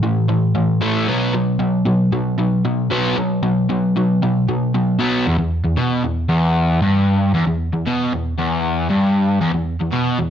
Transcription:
overdriven electric guitar
0.03 A2 E3
0.28 A2 E3
0.55 A2 E3
0.81 A2 E3 A3
1.07 B2 F#3 B3
1.34 B2 F#3
1.59 B2 F#3
1.85 B2 F#3
2.13 B2 F#3
2.39 B2 F#3
2.65 B2 F#3
2.90 B2 F#3 B3
3.17 B2 F#3
3.43 B2 F#3
3.69 B2 F#3
3.96 B2 F#3
4.22 B2 F#3
4.49 B2 F#3
4.74 B2 F#3
4.99 B2 F#3 B3
5.26 E2
5.39 E2
5.64 E2
5.77 B2
6.03 E2
6.29 E2
6.82 G2
7.34 E2
7.47 E2
7.73 E2
7.86 B2
8.13 E2
8.38 E2
8.90 G2
9.41 E2
9.54 E2
9.81 E2
9.92 B2
10.19 E2

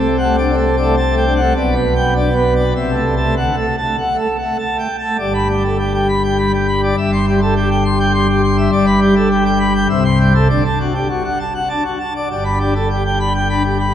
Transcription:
pipe organ
Already playing: C2 C3
0.00 A4
0.18 F#5
0.23 A3
0.38 D4 D5
0.52 A3
0.58 A4
0.77 D5
0.82 A3
0.97 A5
1.11 A3
1.17 G5
1.26 D4
1.36 F#5
1.41 A3
1.57 B1 B2 D5
1.71 B3
1.76 B4
1.96 G5
2.00 B3
2.15 D4 D5
2.31 B3
2.36 B4
2.55 D5
2.61 B3
2.76 C2 C3 E5
2.91 A3
2.97 A4
3.17 A5
3.22 A3
3.37 D2 D3 F#5
3.53 A3
3.57 A4
3.78 A5
3.83 A3
3.98 F#5
4.14 A3
4.19 A4
4.38 F#5
4.43 A3
4.58 A5
4.74 A3
4.79 G5
4.99 A5
5.04 A3
5.19 G1 G2 D5
5.34 B5
5.49 G3 G4
5.64 A4
5.79 G4
5.94 G5
6.09 B5
6.24 G5
6.38 G3 B5
6.54 G4
6.68 B5
6.83 D5
6.98 G1 G2 E5
7.12 C6
7.27 G3 G4
7.42 A4
7.56 G4
7.71 G5
7.85 C6
8.00 G5
8.14 G3 C6
8.29 G4
8.44 C6
8.58 E5
8.72 G1 G2 D5
8.87 B5
9.01 G3 G4
9.16 A4
9.31 G4
9.45 G5
9.60 B5
9.75 G5
9.89 C2 C3 E5
10.05 C6
10.20 G3 G4
10.35 A4
10.49 D2 D3 D5
10.65 A5
10.80 D4 F#4
10.94 G4
11.10 F#4
11.25 F#5
11.40 A5
11.55 F#5
11.69 D4 A5
11.85 F#4
11.99 A5
12.15 D5
12.30 G1 G2 D5
12.45 B5
12.60 D4 G4
12.76 A4
12.90 G4
13.05 G5
13.20 B5
13.35 G5
13.50 D4 B5
13.65 G4
13.80 B5

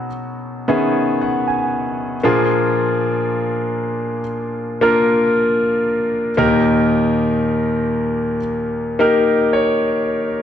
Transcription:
grand piano
Already playing: B2 F#3 B3 C#4 D#4 F#4
0.68 D#3 B3 C#4 G#4 E5
1.22 F#5
1.48 G#5
2.23 A#2 F3 A#3 D4 F4 G#4
4.81 A#3 D4 F4 A#4
6.37 D#2 A#2 A#3 D#4 G4 A#4
8.99 A#3 D#4 G4 A#4
9.53 C#5

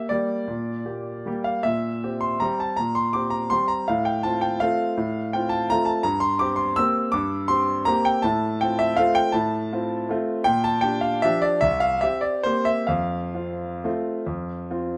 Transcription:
grand piano
0.09 G3 A#3 G4 D5
0.48 A#2
0.85 A#3 G4
1.26 G3 A#3 G4
1.44 F5
1.63 A#2 E5
2.04 C4 G4
2.21 C6
2.40 G3 C4 G4 A#5
2.60 A5
2.77 A#2 A#5
2.95 C6
3.13 C4 G4 D6
3.30 A#5
3.50 G3 C4 G4 C6
3.68 A#5
3.88 A2 F5
4.05 G5
4.23 C4 F4 A5
4.41 G5
4.60 A3 C4 F4 F5
4.97 A2
5.33 C4 F4 G5
5.49 A5
5.70 A3 C4 F4 A#5
5.85 A5
6.03 G2 A#5
6.20 C6
6.39 C4 G4 D6
6.56 C6
6.76 A#3 C4 G4 E6
7.12 G2 D6
7.48 C4 G4 C6
7.85 A#3 C4 G4 A#5
8.05 G5
8.22 A2 A5
8.61 C4 F4 G5
8.79 E5
8.97 A3 C4 F4 F5
9.15 G5
9.32 A2 A5
9.73 C4 F4
10.09 A3 C4 F4
10.44 A#2 G5
10.64 A5
10.81 D4 G4 G5
11.01 F5
11.22 F3 D4 G4 E5
11.42 D5
11.61 C2 E5
11.80 F5
12.01 C4 G4 E5
12.21 D5
12.43 A#3 C4 G4 C5
12.65 E5
12.87 F2 F5
13.35 C4 F4
13.84 A3 C4 F4
14.27 F2
14.71 C4 F4

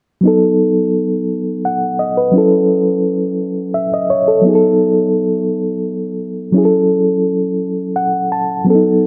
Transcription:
reed electric piano
0.21 F#3 B3
0.25 D#4 A4
1.65 F#5
1.99 D#5
2.17 B4
2.32 F#3 C#4
2.36 E4 A4
3.74 E5
3.94 D#5
4.10 C#5
4.28 A4
4.42 F#3 B3
4.47 D#4 G#4
4.55 A4
6.52 F#3 C#4
6.56 E4 G#4
6.65 A4
7.96 F#5
8.32 A5
8.64 F#3 B3 C#4
8.70 A4
8.75 D#4

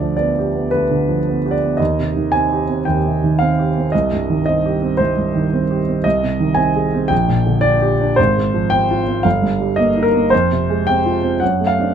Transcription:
grand piano
Already playing: D2 D3 D5
0.01 F3
0.17 B3 D5
0.39 G4
0.56 B3
0.71 D2 B4
0.91 D3
1.09 F3
1.29 B3
1.46 G4
1.51 D5
1.63 B3
1.77 D#2 D#5
1.99 C3
2.16 D#3
2.32 C4 G#5
2.52 G4
2.70 C4
2.85 D#2 G5
3.06 C3
3.24 D#3
3.39 C4 F5
3.59 G4
3.77 C4
3.92 C2 D#5
4.12 G2
4.30 D#3
4.46 C4 D#5
4.66 G4
4.82 C4
4.97 C2 C5
5.17 G2
5.35 D#3
5.54 C4
5.71 G4
5.89 C4
6.04 C2 D#5
6.23 C3
6.40 D#3
6.55 C4 G#5
6.76 G#4
6.94 C4
7.08 A#1 G5
7.28 A#2
7.47 D3
7.61 D4 D5
7.81 G4
8.01 D4
8.16 G#1 C5
8.37 G#2
8.54 F3
8.70 C4 G5
8.91 F4
9.07 C4
9.23 G1 F5
9.42 G2
9.60 G3
9.76 A#3 D#5
9.96 D#4
10.03 A#4
10.15 A#3
10.30 F2 C5
10.52 C3
10.70 G#3
10.87 C4 G5
11.06 F4
11.23 C4
11.40 F#2 F#5
11.61 A3
11.67 F5
11.79 C4 D4

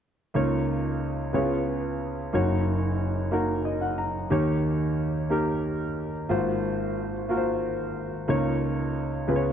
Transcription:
grand piano
0.34 C#2 C#3 A#3 D#4 F4 C#5
1.33 C#2 C#3 B3 E4 G#4 C#5
1.40 F4
2.33 F#1 F#2 A#3 D#4 F#4 C#5
3.31 A#3 D#4 F#4 A#4
3.65 D#5
3.81 F#5
3.98 A#5
4.30 D#2 D#3 A#3 D#4 G4 C#5
5.29 A#3 D#4 G4 A#4
6.29 G#1 G#2 A#3 F4 F#4 C5
7.29 A#3 F4 F#4 A#4
7.37 C5
8.28 C#2 C#3 A#3 D#4 F4 C#5
9.28 C#2 C#3 B3 F4 G#4 B4
9.36 C#5

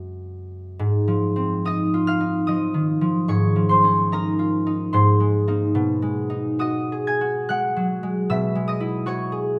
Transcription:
harp
Already playing: F#2 G#3 C#4 E4 A#4 C#5
0.79 G#2
1.08 F3
1.36 C4
1.65 D#4 D#5 D#6
1.94 F4
2.07 F5 F6
2.20 D#4
2.47 F3 D#5 D#6
2.74 D#3
3.01 F3
3.28 G#2 C#5 C#6
3.56 F3
3.69 C5 C6
3.84 C#4
4.12 D#4 A#4 A#5
4.39 F4
4.67 D#4
4.93 G#2 C5 C6
5.20 G#3
5.48 A#3 D#4
5.75 B2
6.02 G#3
6.30 D#4
6.59 F#4 D#5 D#6
6.92 G#4
7.07 G#5 G#6
7.21 F#4
7.49 G#3 F#5 F#6
7.76 F#3
8.03 G#3
8.30 B2 E5 E6
8.55 G#3
8.68 D#5 D#6
8.80 E4
9.06 F#4 C#5 C#6
9.32 G#4

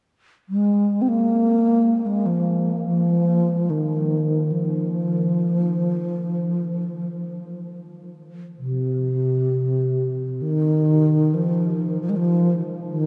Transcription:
bass flute
0.49 G#3
1.02 C4
1.08 A#3
2.06 G#3
2.26 F3
2.86 F3
3.70 D#3
4.52 F3
8.58 C3
10.42 D#3
11.34 F3
12.01 F3
12.09 G#3
12.16 F3
12.88 D#3

